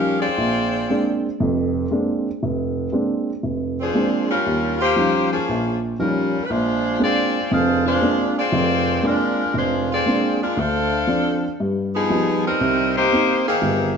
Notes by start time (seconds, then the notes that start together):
Already playing: F3 G3 C#4 D#4 G4 A#4 F5
0.20 C4 F4 G#4 D5
0.38 A#1
0.90 G#3 A#3 C4 D4
1.40 F1 F2
1.91 G#3 A#3 C4 D4
2.43 F1
2.92 G#3 A#3 C4 D4
3.43 F1
3.80 F3 C4 D4 G#4
3.94 G#3 A#3 C4 D4
4.30 G3 C#4 F4 A#4
4.46 D#2
4.81 A#3 F4 G4 C5
4.96 F3 G3 C#4 D#4
5.32 F3 A#3 C#4 G#4
5.49 A#1 A#2
5.99 F3 G3 C#4 D#4 F4 A#4
6.45 B4
6.50 A#1 G#3 D4 F4 C5
6.99 G#3 A#3 C4 D4 D5
7.03 C4 F4 G#4
7.51 F1 F2 D4 G#4 C5 F5
7.86 G#3 D4 F4 C5
8.02 G#3 A#3 C4 D4
8.37 C4 F4 G#4 D5
8.52 F1 F2
9.03 G#3 A#3 C4 D4 F4 A#4
9.54 F1 G#3 D4 F4 C5
9.92 C4 F4 G#4 D5
10.06 G#3 A#3 C4 D4
10.43 G#3 D4 F4 A#4
10.57 D2 D4 A4 C5 F5
11.07 F3 C4 D4
11.60 G2
11.95 F3 B3 D#4 G#4
12.10 F3 G3 B3 D#4
12.46 G3 C4 D#4 A#4
12.61 C2
12.97 A#3 D#4 G4 C5
13.12 A#3 C4 D#4
13.47 D#3 A#3 C4 G#4
13.62 G1 G2